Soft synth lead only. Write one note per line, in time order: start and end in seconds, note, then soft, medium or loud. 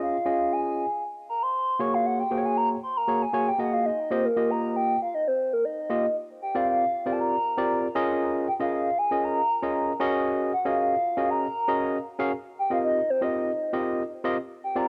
0.02 0.54 F5 loud
0.53 1.03 G#5 loud
1.29 1.44 A#5 loud
1.43 1.82 C6 loud
1.81 1.96 C#6 loud
1.94 2.06 F5 loud
2.06 2.19 F#5 loud
2.20 2.47 G5 loud
2.45 2.57 G#5 loud
2.58 2.69 A#5 loud
2.83 2.98 C6 loud
2.97 3.24 A#5 loud
3.22 3.49 G#5 loud
3.48 3.59 G5 loud
3.60 3.75 F#5 loud
3.73 3.87 F5 medium
3.86 4.13 D#5 loud
4.11 4.27 C5 loud
4.25 4.52 A#4 medium
4.50 4.76 A#5 medium
4.76 5.00 G5 medium
5.02 5.16 F5 medium
5.14 5.29 D#5 loud
5.27 5.55 C5 medium
5.53 5.66 A#4 medium
5.65 6.16 D#5 medium
6.42 6.58 G5 medium
6.56 6.68 F5 medium
6.68 7.14 F5 medium
7.12 7.21 A5 medium
7.20 7.96 A#5 loud
8.48 8.54 G5 medium
8.61 8.72 F5 medium
8.73 9.00 F5 medium
8.98 9.26 G#5 loud
9.24 10.01 A#5 loud
10.53 10.68 F#5 medium
10.66 10.78 F5 medium
10.78 11.31 F5 medium
11.30 12.06 A#5 loud
12.59 12.71 G5 loud
12.73 12.78 F5 loud
12.84 13.12 D#5 loud
13.10 13.25 C5 loud
13.23 14.12 D#5 medium
14.64 14.79 G5 medium
14.78 14.88 A#5 loud